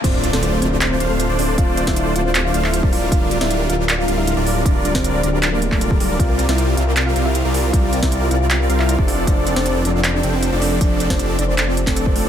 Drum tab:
CC |x---------------|----------------|----------------|----------------|
HH |x-x-x-x-x-x-x-o-|x-x-x-x-x-x-x-o-|x-x-x-x-x-x-x-o-|x-x-x-x-x-x-x-o-|
CP |--------x-------|--------x--x----|--------x-------|--------x--x----|
SD |---o------------|---o------------|---o------------|---o------------|
BD |o---------------|o--o---------o--|o---------------|o--o-------o-o--|

CC |----------------|----------------|----------------|----------------|
HH |x-x-x-x-x-x-x-o-|x-x-x-x-x-x-x-o-|x-x-x-x-x-x-x-o-|x-x-x-x-x-x-x-o-|
CP |--------x-------|--------x--x----|--------x-------|--------x--x----|
SD |---o------------|---o------------|---o------------|---o-------o----|
BD |o---------------|o--o---------o--|o---------------|o--o-------o-o--|